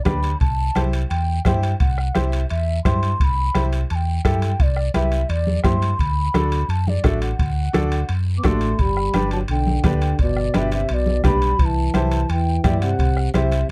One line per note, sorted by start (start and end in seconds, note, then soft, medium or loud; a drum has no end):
0.05 0.34 D2 medium
0.05 0.30 D4 medium
0.05 0.30 G4 medium
0.05 0.30 B4 medium
0.05 0.38 B5 medium
0.05 bombo low medium
0.05 bombo rim medium
0.05 high conga medium
0.05 high timbale medium
0.05 low timbale medium
0.05 short guiro medium
0.23 high timbale medium
0.23 short guiro medium
0.40 0.69 C2 medium
0.40 0.80 A5 loud
0.40 bombo low medium
0.40 high timbale medium
0.40 long guiro medium
0.75 1.03 C2 medium
0.75 1.00 E4 medium
0.75 1.00 G4 medium
0.75 1.00 C5 medium
0.75 bombo rim medium
0.75 high conga medium
0.75 high timbale medium
0.75 short guiro medium
0.93 high timbale medium
0.93 short guiro medium
1.10 1.38 E2 medium
1.10 1.45 G5 medium
1.10 high timbale medium
1.10 long guiro medium
1.45 1.73 G2 medium
1.45 1.70 E4 medium
1.45 1.70 G4 medium
1.45 1.70 C5 medium
1.45 1.78 G5 medium
1.45 bombo low medium
1.45 bombo rim medium
1.45 high conga medium
1.45 high timbale medium
1.45 low timbale medium
1.45 short guiro medium
1.63 high timbale medium
1.63 short guiro medium
1.80 2.08 C2 medium
1.80 2.17 F#5 medium
1.80 bombo low medium
1.80 high timbale medium
1.80 long guiro medium
1.98 bombo rim medium
2.15 2.44 C2 medium
2.15 2.39 E4 medium
2.15 2.40 G4 medium
2.15 2.40 C5 medium
2.15 2.49 E5 medium
2.15 bombo rim medium
2.15 high conga medium
2.15 high timbale medium
2.15 short guiro medium
2.32 high timbale medium
2.32 short guiro medium
2.49 2.78 E2 medium
2.49 2.82 E5 medium
2.49 high timbale medium
2.49 long guiro medium
2.84 3.13 G2 medium
2.84 3.09 E4 medium
2.84 3.09 G4 medium
2.84 3.10 C5 medium
2.84 3.20 C6 medium
2.84 bombo low medium
2.84 bombo rim medium
2.84 high conga medium
2.84 high timbale medium
2.84 short guiro medium
3.03 high timbale medium
3.03 short guiro medium
3.20 3.48 C2 medium
3.20 3.63 B5 medium
3.20 3.25 C6 medium
3.20 bombo low medium
3.20 high timbale medium
3.20 long guiro medium
3.55 3.83 C2 medium
3.55 3.79 E4 medium
3.55 3.79 G4 medium
3.55 3.79 C5 medium
3.55 bombo rim medium
3.55 high conga medium
3.55 high timbale medium
3.55 short guiro medium
3.72 high timbale medium
3.72 short guiro medium
3.90 4.18 E2 medium
3.90 3.96 A5 medium
3.90 high timbale medium
3.90 long guiro medium
3.95 4.23 G5 medium
4.25 4.53 G2 loud
4.25 4.49 E4 medium
4.25 4.49 G4 medium
4.25 4.49 A4 medium
4.25 4.63 G5 medium
4.25 bombo low medium
4.25 bombo rim medium
4.25 high conga medium
4.25 high timbale medium
4.25 short guiro medium
4.42 high timbale medium
4.42 short guiro medium
4.60 4.88 C2 medium
4.60 4.94 D5 medium
4.60 bombo low medium
4.60 high timbale medium
4.60 long guiro medium
4.77 bombo rim medium
4.94 5.23 C2 medium
4.94 5.19 E4 medium
4.94 5.19 G4 medium
4.94 5.19 B4 medium
4.94 5.31 E5 medium
4.94 bombo rim medium
4.94 high conga medium
4.94 high timbale medium
4.94 short guiro medium
5.12 high timbale medium
5.12 short guiro medium
5.29 5.57 E2 medium
5.29 5.64 D5 medium
5.29 high timbale medium
5.29 long guiro medium
5.47 high conga medium
5.64 5.92 G2 loud
5.64 5.89 E4 medium
5.64 5.89 G4 medium
5.64 5.89 C5 medium
5.64 6.01 C6 medium
5.64 bombo low medium
5.64 bombo rim medium
5.64 high conga medium
5.64 high timbale medium
5.64 low timbale medium
5.64 short guiro medium
5.82 high timbale medium
5.82 short guiro medium
5.99 6.27 D2 medium
5.99 6.72 B5 loud
5.99 bombo low medium
5.99 high timbale medium
5.99 long guiro medium
6.34 6.62 D2 medium
6.34 6.59 D4 medium
6.34 6.59 F#4 medium
6.34 6.59 A4 medium
6.34 bombo rim medium
6.34 high conga medium
6.34 high timbale medium
6.34 short guiro medium
6.52 high timbale medium
6.52 short guiro medium
6.69 6.97 F#2 medium
6.69 6.90 A5 medium
6.69 high timbale medium
6.69 long guiro medium
6.87 7.08 D5 medium
6.87 high conga medium
7.03 7.32 A1 loud
7.03 7.28 D4 medium
7.03 7.29 F#4 medium
7.03 7.29 A4 medium
7.03 7.22 E5 medium
7.03 bombo low medium
7.03 bombo rim medium
7.03 high conga medium
7.03 high timbale medium
7.03 short guiro medium
7.22 8.11 F#5 medium
7.22 high timbale medium
7.22 short guiro medium
7.39 7.67 D2 medium
7.39 bombo low medium
7.39 high timbale medium
7.39 long guiro medium
7.73 8.02 D2 medium
7.73 7.98 D4 medium
7.73 7.99 F#4 medium
7.73 7.99 A4 medium
7.73 bombo rim medium
7.73 high conga medium
7.73 high timbale medium
7.73 short guiro medium
7.92 high timbale medium
7.92 short guiro medium
8.09 8.37 F#2 medium
8.09 high timbale medium
8.09 long guiro medium
8.38 8.46 B3 medium
8.38 8.48 D6 medium
8.43 8.72 A1 medium
8.43 8.83 A3 medium
8.43 8.69 D4 medium
8.43 8.69 F#4 medium
8.43 8.69 A4 medium
8.43 8.81 C6 medium
8.43 bombo low medium
8.43 bombo rim medium
8.43 high conga medium
8.43 high timbale medium
8.43 low timbale medium
8.43 short guiro medium
8.61 high timbale medium
8.61 short guiro medium
8.79 9.07 G1 medium
8.79 9.33 G3 medium
8.79 9.32 B5 loud
8.79 bombo low medium
8.79 high timbale medium
8.79 long guiro medium
8.97 bombo rim medium
9.14 9.42 G1 medium
9.14 9.39 D4 medium
9.14 9.39 G4 medium
9.14 9.39 B4 medium
9.14 bombo rim medium
9.14 high conga medium
9.14 high timbale medium
9.14 short guiro medium
9.31 9.41 F#3 medium
9.31 9.38 A5 medium
9.31 high timbale medium
9.31 short guiro medium
9.48 9.77 B1 medium
9.48 9.83 D3 medium
9.48 9.83 G5 loud
9.48 high timbale medium
9.48 long guiro medium
9.67 high conga medium
9.84 10.12 D2 medium
9.84 10.18 D3 medium
9.84 10.09 D4 medium
9.84 10.09 G4 medium
9.84 10.10 B4 medium
9.84 10.18 G5 medium
9.84 bombo low medium
9.84 bombo rim medium
9.84 high conga medium
9.84 high timbale medium
9.84 low timbale medium
9.84 short guiro medium
10.01 high timbale medium
10.01 short guiro medium
10.19 10.47 G1 medium
10.19 10.57 B2 medium
10.19 10.58 D5 medium
10.19 bombo low medium
10.19 high timbale medium
10.19 long guiro medium
10.37 bombo rim medium
10.54 10.83 G1 medium
10.54 10.73 B2 medium
10.54 10.79 D4 medium
10.54 10.79 G4 medium
10.54 10.79 B4 medium
10.54 10.73 E5 medium
10.54 bombo rim medium
10.54 high conga medium
10.54 high timbale medium
10.54 short guiro medium
10.71 10.93 C3 medium
10.71 10.90 E5 medium
10.71 high timbale medium
10.71 short guiro medium
10.89 11.18 B1 medium
10.89 11.25 B2 medium
10.89 10.95 E5 medium
10.89 high timbale medium
10.89 long guiro medium
10.94 11.25 D5 medium
11.06 high conga medium
11.24 11.52 B1 medium
11.24 11.63 G3 medium
11.24 11.49 D4 medium
11.24 11.49 G4 medium
11.24 11.49 B4 medium
11.24 11.61 B5 medium
11.24 bombo low medium
11.24 bombo rim medium
11.24 high conga medium
11.24 low conga medium
11.24 high timbale medium
11.24 low timbale medium
11.24 short guiro medium
11.42 high timbale medium
11.42 short guiro medium
11.59 11.87 C2 medium
11.59 11.96 E3 medium
11.59 11.67 B5 medium
11.59 bombo low medium
11.59 high timbale medium
11.59 long guiro medium
11.66 11.95 A5 loud
11.94 12.22 C2 medium
11.94 12.31 E3 medium
11.94 12.19 E4 medium
11.94 12.19 G4 medium
11.94 12.19 C5 medium
11.94 12.32 A5 medium
11.94 bombo rim medium
11.94 high conga medium
11.94 high timbale medium
11.94 short guiro medium
12.11 high timbale medium
12.11 short guiro medium
12.29 12.57 E2 medium
12.29 12.65 E3 medium
12.29 12.64 G5 loud
12.29 high timbale medium
12.29 long guiro medium
12.64 12.92 G2 loud
12.64 12.82 E3 medium
12.64 12.89 E4 medium
12.64 12.89 G4 medium
12.64 12.89 D5 medium
12.64 12.80 G5 medium
12.64 bombo low medium
12.64 bombo rim medium
12.64 high conga medium
12.64 high timbale medium
12.64 low timbale medium
12.64 short guiro medium
12.81 13.31 C3 medium
12.81 13.30 F#5 loud
12.81 high timbale medium
12.81 short guiro medium
12.99 13.27 C2 medium
12.99 bombo low medium
12.99 high timbale medium
12.99 long guiro medium
13.17 bombo rim medium
13.34 13.62 C2 medium
13.34 13.67 C3 medium
13.34 13.59 E4 medium
13.34 13.59 G4 medium
13.34 13.59 C5 medium
13.34 13.67 E5 medium
13.34 bombo rim medium
13.34 high conga medium
13.34 high timbale medium
13.34 short guiro medium
13.52 high timbale medium
13.52 short guiro medium